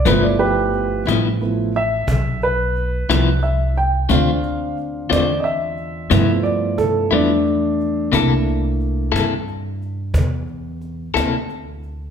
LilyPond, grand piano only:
<<
  \new Staff \with { instrumentName = "Grand piano" } { \time 12/8 \key g \mixolydian \tempo 4. = 60 b'16 d''16 <g' b'>4 r4 e''4 b'4. e''8 g''8 | f''4 r8 d''8 <ees'' e''>4. d''8 a'8 <a d'>4.~ | <a d'>4. r1 r8 | }
  \new Staff \with { instrumentName = "Grand piano" } { \time 12/8 \key g \mixolydian <f a b e'>2 <f a b e'>8 r2. r8 | <c' d' f'>2. <f a b e'>4. r4. | <a bes d' e'>4. r1 r8 | }
>>